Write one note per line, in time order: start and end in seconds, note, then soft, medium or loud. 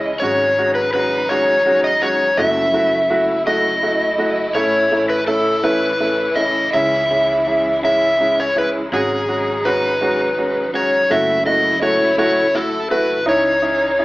0.00 0.17 C#2 medium
0.00 2.34 C#3 medium
0.00 0.19 E3 medium
0.00 0.11 G#3 medium
0.00 2.34 G#3 medium
0.00 0.11 C#4 medium
0.00 0.11 E4 medium
0.00 0.19 E4 medium
0.00 0.24 D#5 medium
0.20 2.34 G#1 loud
0.20 4.51 F#3 medium
0.20 0.47 G#3 medium
0.20 0.48 C#4 medium
0.20 2.36 D#4 medium
0.20 0.48 F#4 medium
0.20 0.75 C#5 medium
0.58 0.84 G#3 medium
0.58 0.84 C#4 medium
0.58 0.84 F#4 medium
0.75 0.92 B4 medium
0.94 1.20 G#3 medium
0.94 1.20 C#4 medium
0.94 1.20 F#4 medium
0.94 1.31 B4 medium
1.29 1.56 G#3 medium
1.29 1.56 C#4 medium
1.29 1.56 F#4 medium
1.29 1.84 C#5 medium
1.65 1.91 G#3 medium
1.65 1.92 C#4 medium
1.65 1.92 F#4 medium
1.84 2.02 D#5 loud
2.02 2.27 G#3 medium
2.02 2.28 C#4 medium
2.02 2.28 F#4 medium
2.02 2.39 C#5 medium
2.37 4.51 F#1 loud
2.37 14.05 C#3 medium
2.37 6.69 A3 medium
2.37 2.64 A3 medium
2.37 8.88 E4 medium
2.37 2.64 E4 medium
2.37 2.64 F#4 medium
2.37 3.42 E5 loud
2.73 2.99 A3 medium
2.73 2.99 E4 medium
2.73 3.00 F#4 medium
3.10 3.36 A3 medium
3.10 3.36 E4 medium
3.10 3.36 F#4 medium
3.46 3.72 A3 medium
3.46 3.72 E4 medium
3.46 3.72 F#4 medium
3.46 4.58 D#5 medium
3.83 4.08 A3 medium
3.83 4.08 E4 medium
3.83 4.09 F#4 medium
4.18 4.44 A3 medium
4.18 4.45 E4 medium
4.18 4.45 F#4 medium
4.54 6.69 A1 medium
4.54 8.88 E3 medium
4.54 4.81 A3 medium
4.54 4.81 C#4 medium
4.54 4.81 E4 medium
4.54 5.09 C#5 medium
4.91 5.17 A3 medium
4.91 5.17 C#4 medium
4.91 5.18 E4 medium
5.09 5.26 B4 medium
5.27 5.54 A3 medium
5.27 5.53 C#4 medium
5.27 5.54 E4 medium
5.27 5.64 A4 medium
5.63 5.90 A3 medium
5.63 5.90 C#4 medium
5.63 5.90 E4 loud
5.63 6.39 B4 medium
6.00 6.27 A3 medium
6.00 6.27 C#4 medium
6.00 6.27 E4 medium
6.36 6.63 A3 medium
6.36 6.63 C#4 medium
6.36 6.63 E4 medium
6.36 6.73 D#5 medium
6.73 8.88 C#2 loud
6.73 7.00 G#3 medium
6.73 11.07 G#3 medium
6.73 7.00 C#4 medium
6.73 7.00 E4 medium
6.73 7.79 E5 medium
7.11 7.37 G#3 medium
7.11 7.37 C#4 medium
7.11 7.37 E4 medium
7.47 7.73 G#3 medium
7.47 7.73 C#4 medium
7.47 7.73 E4 medium
7.83 8.09 G#3 medium
7.83 8.09 C#4 medium
7.83 8.09 E4 medium
7.83 8.40 E5 medium
8.20 8.46 G#3 medium
8.20 8.46 C#4 medium
8.20 8.46 E4 medium
8.40 8.56 C#5 medium
8.56 8.82 G#3 medium
8.56 8.82 C#4 medium
8.56 8.82 E4 medium
8.56 8.68 B4 medium
8.92 11.06 G#1 loud
8.92 13.24 F#3 medium
8.92 9.18 G#3 medium
8.92 9.18 C#4 medium
8.92 11.08 D#4 medium
8.92 9.19 F#4 loud
8.92 9.68 G#4 medium
9.28 9.55 G#3 medium
9.28 9.55 C#4 medium
9.28 9.55 F#4 medium
9.65 9.91 G#3 medium
9.65 9.91 C#4 medium
9.65 9.92 F#4 medium
9.65 10.70 B4 medium
10.01 10.27 G#3 medium
10.01 10.27 C#4 medium
10.01 10.28 F#4 medium
10.38 10.63 G#3 medium
10.38 10.64 C#4 medium
10.38 10.64 F#4 medium
10.74 11.00 G#3 medium
10.74 11.00 C#4 medium
10.74 11.00 F#4 medium
10.74 11.12 C#5 medium
11.10 13.26 F#1 loud
11.10 13.25 A3 medium
11.10 11.36 A3 medium
11.10 13.25 E4 medium
11.10 11.36 E4 medium
11.10 11.36 F#4 loud
11.10 11.44 E5 medium
11.45 11.72 A3 medium
11.45 11.72 E4 medium
11.45 11.72 F#4 medium
11.45 11.80 D#5 medium
11.81 12.08 A3 medium
11.81 12.08 E4 medium
11.81 12.08 F#4 medium
11.81 12.18 C#5 medium
12.18 12.44 A3 medium
12.18 12.44 E4 medium
12.18 12.45 F#4 loud
12.18 12.56 C#5 medium
12.55 12.81 A3 medium
12.55 12.81 E4 medium
12.55 12.81 F#4 medium
12.55 12.91 A4 medium
12.91 13.17 A3 medium
12.91 13.17 E4 medium
12.91 13.17 F#4 medium
12.91 13.25 B4 medium
13.26 14.05 C#2 loud
13.26 14.05 E3 medium
13.26 14.05 G#3 medium
13.26 13.52 C#4 medium
13.26 13.52 D#4 medium
13.26 14.05 D#4 medium
13.26 13.52 E4 medium
13.26 14.05 C#5 medium
13.62 13.89 C#4 medium
13.62 13.89 D#4 medium
13.62 13.89 E4 medium
13.98 14.05 C#4 medium
13.98 14.05 D#4 medium
13.98 14.05 E4 medium